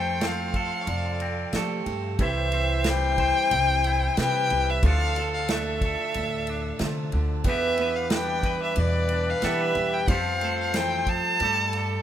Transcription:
Already playing: F2 F3 G3 A3 C4 G4 A4 C5 F5 G5 C6
0.21 A3 C4, snare, ride
0.26 F5
0.54 A4, kick, ride
0.81 C#5
0.87 F2 C3 D5, ride
1.20 C4, ride
1.53 F3 A3 C4 G4 A4, snare, ride
1.86 G2, ride
2.17 C2 C3 E3 C4 E4 C5 E5 E6, kick, ride
2.21 G4 C5 E5
2.52 C4 C5, ride
2.84 G3 E4, snare, ride
2.90 G5
3.18 C5, kick, ride
3.51 C2 C3, ride
3.84 E4, ride
4.17 C3 G3 C4 E4 G4 B4, snare, ride
4.22 G5
4.50 C2, ride
4.70 E5
4.83 D2 D3 F3 D4 F4 A4 D5 A5, kick, ride
4.87 A4 F5
5.16 F3 A4, ride
5.34 F5
5.49 A3 D4 E5, snare, ride
5.81 A4, kick, ride
6.14 D2 A2, ride
6.47 D4, ride
6.79 C3 D3 F3 A3, snare, ride
7.12 D2 D3, ride
7.44 E2 E3 B3 B4 E5 G5 D6, kick, ride
7.48 D4 G4 B4 E5
7.78 B3 B4, ride
7.96 F5
8.10 G3 D4 B4 G5, snare, ride
8.43 B4, kick, ride
8.63 E5
8.76 E2 B2, ride
8.81 D5
9.09 D4, ride
9.30 F5
9.42 E3 G3 B3 D4 G4 A4 E5, snare, ride
9.61 B4
9.75 E2, ride
9.94 G5
10.08 F2 F3 C4 G4 A4 C5 F5 C6, kick, ride
10.12 A4
10.41 A3 A4, ride
10.61 F5
10.74 E3 C4 G5, snare, ride
11.07 F3 A5, kick, ride
11.39 G2 G3 A3 G4 A4 D5 D6, ride
11.44 A4
11.73 ride
11.77 A4

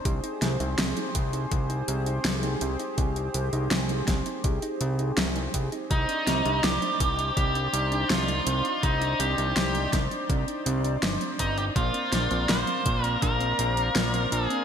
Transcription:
Already playing: C5
0.05 C2 G4 G#4, kick, closed hi-hat
0.23 D#4, closed hi-hat
0.42 C2 C4, snare, closed hi-hat
0.60 C2 D#4, closed hi-hat
0.78 C2 C4, snare, closed hi-hat
0.97 D#4, closed hi-hat
1.15 C2 G4, kick, closed hi-hat
1.33 D#4, closed hi-hat
1.51 C2 C4, kick, closed hi-hat
1.70 D#4, closed hi-hat
1.88 C2 C4, closed hi-hat
2.06 D#4, closed hi-hat
2.25 C2 G4, snare, closed hi-hat
2.43 D#4, closed hi-hat
2.61 C2 C4, closed hi-hat
2.79 D#4, closed hi-hat
2.98 C2 C4, kick, closed hi-hat
3.16 D#4, closed hi-hat
3.34 C2 G4, closed hi-hat
3.53 C2 D#4, closed hi-hat
3.71 C2 C4, snare, closed hi-hat
3.89 D#4, closed hi-hat
4.08 C2 C4, kick, snare, closed hi-hat
4.26 D#4, closed hi-hat
4.44 C2 G4, kick, closed hi-hat
4.62 D#4, closed hi-hat
4.81 C2 C4, closed hi-hat
4.99 D#4, closed hi-hat
5.17 C2 C4, snare, closed hi-hat
5.36 D#4, closed hi-hat
5.54 C2 G4, kick, closed hi-hat
5.72 D#4, closed hi-hat
5.91 C2 C4 D#4 C5 D5, kick, closed hi-hat
6.09 D4, closed hi-hat
6.27 C2 C4, snare, closed hi-hat
6.45 C2 D4, closed hi-hat
6.64 C2 D#4 G4, snare, closed hi-hat
6.82 D4, closed hi-hat
7.00 C2 C4, kick, closed hi-hat
7.19 D4, closed hi-hat
7.37 C2 C4 G4, kick, closed hi-hat
7.55 D4, closed hi-hat
7.73 C2 D#4, closed hi-hat
7.92 D4, closed hi-hat
8.10 C2 C4 F4, snare, closed hi-hat
8.28 D4, closed hi-hat
8.47 C2 C4, closed hi-hat
8.65 D4, closed hi-hat
8.83 C2 D#4, kick, closed hi-hat
9.02 D4, closed hi-hat
9.20 C2 C4 G4, closed hi-hat
9.38 C2 D4, closed hi-hat
9.56 C2 C4, snare, closed hi-hat
9.75 D4, closed hi-hat
9.93 C2 D#4, kick, snare, closed hi-hat
10.11 D4, closed hi-hat
10.29 C2 C4, kick, closed hi-hat
10.48 D4, closed hi-hat
10.66 C2 C4, closed hi-hat
10.84 D4, closed hi-hat
11.03 G1 D#4, snare, closed hi-hat
11.21 D4, closed hi-hat
11.39 G1 C4 D#4, kick, closed hi-hat
11.58 D4 G4, closed hi-hat
11.76 A#1 A#3 F4 A#4 C5 F5, kick, closed hi-hat
11.94 C4, closed hi-hat
12.12 A#1 D4, snare, closed hi-hat
12.31 A#1 C4, closed hi-hat
12.49 A#1 A#3 C5, snare, closed hi-hat
12.67 C4, closed hi-hat
12.86 A#1 A#3, kick, closed hi-hat
13.04 C4 A#4, closed hi-hat
13.22 A#1 D4 A#4, kick, closed hi-hat
13.41 C4, closed hi-hat
13.59 A#1 A#3, closed hi-hat
13.77 C4, closed hi-hat
13.95 A#1 A#3, snare, closed hi-hat
14.14 C4, closed hi-hat
14.32 A#1 D4 G#4, closed hi-hat
14.50 C4, closed hi-hat

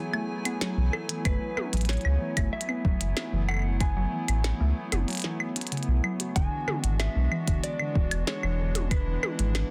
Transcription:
Already playing: F#3 A3 B3 E4 G#4 G#5
0.13 A3, claves
0.45 B3, closed hi-hat, claves
0.61 F#3, snare, closed hi-hat
0.77 B1 E3
0.93 A4, claves
1.09 E3, closed hi-hat
1.25 F#1 A3 B4, kick, closed hi-hat, claves
1.57 B3, high tom, claves
1.73 A1 F#3, closed hi-hat
1.77 closed hi-hat
1.81 closed hi-hat
1.85 C#5, snare, closed hi-hat
1.89 E3, closed hi-hat
1.93 closed hi-hat
1.97 closed hi-hat
2.01 closed hi-hat, claves
2.05 C#2
2.21 E3
2.37 F#1 A3, kick, closed hi-hat, claves
2.53 E5
2.61 closed hi-hat
2.69 B3, claves
2.85 E1 F#3, kick
3.01 F#1 E3, closed hi-hat
3.17 snare, closed hi-hat, claves
3.33 F#1 E3
3.49 A3 F#5, claves
3.51 claves
3.54 claves
3.57 claves
3.59 claves
3.80 B3 G#5, kick, closed hi-hat, claves
3.96 F#3
4.12 E3
4.28 A1, closed hi-hat, claves
4.44 E3, snare, closed hi-hat
4.60 C#2 A3
4.92 F#1 B3, closed hi-hat, high tom, claves
5.08 F#3, closed hi-hat
5.10 closed hi-hat
5.13 closed hi-hat
5.15 closed hi-hat
5.17 closed hi-hat
5.20 closed hi-hat
5.22 E3, snare, closed hi-hat
5.40 claves
5.56 C#4, closed hi-hat
5.61 closed hi-hat
5.67 closed hi-hat
5.72 C#3, closed hi-hat
5.77 closed hi-hat
5.83 closed hi-hat
5.88 B1
6.04 F#3, claves
6.20 F#4, closed hi-hat
6.36 E1 D3 E3 G#3 D4 F#4 G#5, kick, closed hi-hat
6.68 D3, high tom, claves
6.84 G#1 E3 F#5, closed hi-hat
7.00 E5, snare, closed hi-hat, claves
7.16 B1 G#3
7.32 E3, claves
7.48 E1 D3, kick, closed hi-hat
7.64 D5, closed hi-hat
7.79 D3, claves
7.95 D1 E3, kick
8.11 E1, closed hi-hat, claves
8.27 G#3 C#5, snare, closed hi-hat
8.43 E1 E3, claves
8.59 D3
8.75 closed hi-hat, high tom
8.91 D3 E4 B4, kick, closed hi-hat, claves
9.07 E3
9.23 high tom, claves
9.39 G#1 G#3, closed hi-hat
9.55 E3, snare, closed hi-hat, claves

